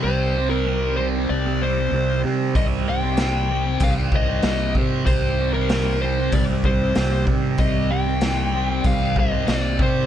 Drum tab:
HH |--------|o-o-o-o-|o-o-o-o-|o-o-o-o-|
SD |--------|--o---o-|--o---o-|--o---o-|
BD |--------|o---oo-o|o---oo-o|o---oo-o|